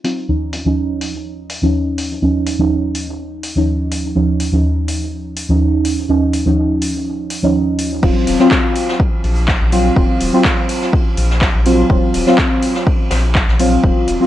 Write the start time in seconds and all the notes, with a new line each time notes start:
0.04 F#3 C4 D#4 F4, open hi-hat
0.28 D#2 F3 C#4 D#4
0.53 open hi-hat
0.65 D#2 F3 C#4 D#4
1.01 open hi-hat
1.50 open hi-hat
1.62 D#2 F3 C#4 D#4
1.98 open hi-hat
2.22 D#2 F3 C#4 D#4
2.46 open hi-hat
2.58 D#2 F3 C#4 D#4
2.95 open hi-hat
3.43 open hi-hat
3.55 D#2 F3 C#4 D#4
3.92 open hi-hat
4.15 D#2 F3 C#4 D#4
4.40 open hi-hat
4.52 D#2 F3 C#4 D#4
4.88 open hi-hat
5.37 open hi-hat
5.49 D#2 F3 C#4 D#4
5.85 open hi-hat
6.09 D#2 F3 C#4 D#4
6.34 open hi-hat
6.46 D#2 F3 C#4 D#4
6.82 open hi-hat
7.30 open hi-hat
7.42 D#2 F3 C#4 D#4
7.79 open hi-hat
8.03 D#1 F#3 C4 F4, kick, ride, crash
8.27 D#1, open hi-hat, ride
8.39 F#3 C4 F4, snare
8.51 kick, snare, clap, ride
8.75 open hi-hat, ride
8.89 snare
9.00 kick, ride
9.24 A#1, open hi-hat, ride
9.48 kick, snare, clap, ride
9.61 A#1
9.72 F#3 C4 F4, open hi-hat, ride
9.96 D#1 F#3 C4 F4, kick, ride
10.21 D#1, open hi-hat, ride
10.33 F#3 C4 F4
10.45 kick, snare, clap, ride
10.69 open hi-hat, ride
10.82 snare
10.93 kick, ride
11.17 A#1, open hi-hat, ride
11.31 snare
11.41 kick, snare, clap, ride
11.54 A#1, ride
11.65 F#3 C4 F4, open hi-hat, ride
11.90 D#1 F#3 C4 F4, kick, ride
12.14 D#1, open hi-hat, ride
12.26 F#3 C4 F4, snare
12.38 kick, snare, clap
12.62 open hi-hat, ride
12.75 snare
12.87 kick, ride
13.10 A#1, snare, open hi-hat, ride
13.35 kick, clap
13.48 A#1, snare
13.59 F#3 C4 F4, open hi-hat, ride
13.83 D#1 F#3 C4 F4, kick, ride
14.08 D#1, open hi-hat, ride
14.20 F#3 C4 F4